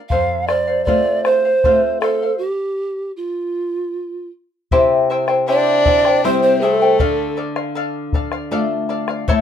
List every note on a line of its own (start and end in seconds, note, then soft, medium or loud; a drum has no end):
0.00 0.11 D5 soft
0.00 0.10 F5 medium
0.09 0.86 F2 medium
0.09 0.48 A4 medium
0.09 0.48 C5 medium
0.09 0.49 F5 medium
0.09 bombo rim soft
0.09 bombo low medium
0.47 0.68 A4 medium
0.47 0.68 C5 medium
0.47 0.84 D5 medium
0.47 0.66 F5 medium
0.47 bombo rim medium
0.67 0.86 C5 soft
0.67 0.87 F5 medium
0.85 1.49 A3 soft
0.85 1.49 C4 soft
0.85 1.49 F4 soft
0.85 1.24 A4 medium
0.85 1.25 C5 medium
0.85 1.26 D5 medium
0.85 1.26 F5 medium
0.85 bombo low medium
1.06 bombo rim soft
1.24 1.45 A4 soft
1.24 2.02 C5 loud
1.24 1.45 C5 medium
1.24 1.44 F5 medium
1.24 bombo rim medium
1.45 1.63 C5 soft
1.45 1.64 F5 medium
1.64 2.26 A3 soft
1.64 2.26 C4 soft
1.64 2.27 F4 soft
1.64 2.01 A4 medium
1.64 2.02 C5 medium
1.64 2.02 F5 medium
1.64 bombo rim soft
1.64 bombo low medium
2.00 2.37 A4 medium
2.00 2.22 A4 medium
2.00 2.22 C5 medium
2.00 2.21 F5 medium
2.00 bombo rim medium
2.23 2.42 C5 soft
2.23 2.41 F5 soft
2.38 3.12 G4 medium
3.17 4.28 F4 medium
4.71 6.97 C3 medium
4.71 5.09 E4 medium
4.71 5.10 G4 medium
4.71 5.10 C5 medium
4.71 5.09 E5 medium
4.71 5.10 G5 medium
4.71 bombo low medium
5.10 5.29 E4 medium
5.10 5.27 C5 medium
5.10 5.29 E5 medium
5.10 5.27 G5 medium
5.28 5.47 E4 soft
5.28 5.47 C5 medium
5.28 5.47 G5 medium
5.28 bombo rim medium
5.48 6.26 D4 medium
5.48 5.85 E4 medium
5.48 5.86 G4 medium
5.48 5.86 C5 medium
5.48 6.26 D5 loud
5.48 5.85 E5 medium
5.48 5.86 G5 medium
5.86 6.05 E4 medium
5.86 6.05 C5 medium
5.86 6.05 E5 medium
5.86 6.04 G5 medium
5.86 bombo low medium
6.05 6.24 E4 soft
6.05 6.24 C5 soft
6.05 6.24 G5 medium
6.05 bombo rim medium
6.24 6.98 G3 soft
6.24 6.42 C4 medium
6.24 6.98 C4 soft
6.24 6.62 E4 medium
6.24 6.98 E4 medium
6.24 6.62 G4 medium
6.24 6.41 C5 loud
6.24 6.62 C5 medium
6.24 6.61 E5 medium
6.24 6.63 G5 medium
6.42 6.64 C4 medium
6.42 6.62 C5 medium
6.61 7.38 A3 medium
6.61 6.82 E4 medium
6.61 6.74 G#4 medium
6.61 6.81 C5 medium
6.61 6.81 E5 medium
6.61 6.81 G5 medium
6.61 bombo rim soft
6.74 7.38 A4 medium
6.82 6.99 E4 soft
6.82 7.00 C5 medium
6.82 6.99 G5 medium
6.99 9.24 D3 medium
6.99 7.36 A4 medium
6.99 7.36 D5 medium
6.99 7.37 F5 medium
6.99 bombo low medium
7.37 7.56 A4 medium
7.37 7.57 D5 medium
7.37 7.55 F5 medium
7.56 7.75 D5 medium
7.56 7.76 F5 medium
7.56 bombo rim medium
7.75 8.13 A4 medium
7.75 8.13 D5 medium
7.75 8.14 F5 medium
8.13 8.33 A4 medium
8.13 8.33 D5 medium
8.13 8.31 F5 medium
8.13 bombo low medium
8.32 8.51 D5 soft
8.32 8.51 F5 medium
8.32 bombo rim medium
8.51 9.25 A3 soft
8.51 9.25 D4 soft
8.51 9.25 F4 medium
8.51 8.88 A4 medium
8.51 8.89 D5 medium
8.51 8.89 F5 loud
8.89 9.08 A4 medium
8.89 9.09 D5 medium
8.89 9.07 F5 medium
8.89 bombo rim soft
9.08 9.28 D5 medium
9.08 9.28 F5 medium
9.08 bombo rim medium
9.28 9.41 A2 medium
9.28 9.41 E4 medium
9.28 9.41 A4 loud
9.28 9.41 C#5 medium
9.28 9.41 E5 medium
9.28 9.41 A5 loud
9.28 bombo low medium